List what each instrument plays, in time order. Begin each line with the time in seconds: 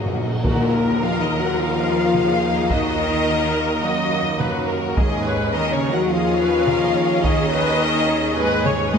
Already playing: cello section F#2, trombone section D#3 F3, french horn section F#3, string section D#4 A#4 D#5 F5, violin section F#4
0.06 timpani A#2
0.13 timpani A#2
0.20 timpani A#2
0.28 timpani A#2
0.35 timpani A#2
0.44 double bass section D#2, cello section A#2, timpani D#3, trombone section D#3 A#3, french horn section A#3, string section D#4 A#4 D#5, violin section F#4 A#4, viola section F#4, taiko, tam-tam
0.74 violin section A#4, viola section A#4
1.01 cello section F3, french horn section F4, violin section F#4 F5
1.21 cello section D#3, french horn section D#4, violin section D#5
1.29 violin section A#4
1.38 cello section F#3, french horn section F#4, violin section F#5
1.58 cello section F3, french horn section F4, violin section F#4 F5
1.86 violin section A#4
2.14 violin section F#4, viola section G#4, taiko mid
2.43 violin section A#4
2.70 cello section D#3, french horn section D#4, violin section F#4 D#5, viola section F#4, taiko
2.99 viola section A#4, violin section A#4
3.28 violin section F#4
3.56 violin section A#4
3.83 cello section F#2, french horn section F#3, violin section F#4, viola section D#5
4.11 violin section A#4
4.39 cello section F#2, french horn section F#3, violin section F#4, viola section B4, taiko mid
4.68 viola section A#4, violin section A#4
4.96 double bass section D#2, cello section G#2, timpani D#3, trombone section D#3 C#4, french horn section G#3, string section C#4 G#4 C#5 D#5, violin section G#4 D#5, viola section G#4, taiko
5.25 viola section B4, violin section C#5
5.54 cello section D#3, french horn section D#4, viola section A#4, violin section D#5
5.73 cello section C#3, french horn section C#4, violin section C#5
5.81 violin section C#5
5.91 cello section F#3, french horn section F#4, violin section F#5
6.09 cello section F3, french horn section F4, viola section G#4, violin section D#5 F5
6.38 viola section B4, violin section C#5
6.66 viola section A#4, violin section D#5, taiko mid
6.96 violin section C#5
7.23 cello section D#3, french horn section D#4, viola section G#4, violin section D#5, taiko
7.52 viola section B4, violin section C#5
7.80 viola section A#4, violin section D#5
8.09 viola section G#4, violin section C#5
8.37 cello section G#2, french horn section G#3, violin section G#4 D#5, viola section B4
8.65 violin section C#5, viola section C#5, taiko mid
8.93 viola section B4, violin section D#5, taiko high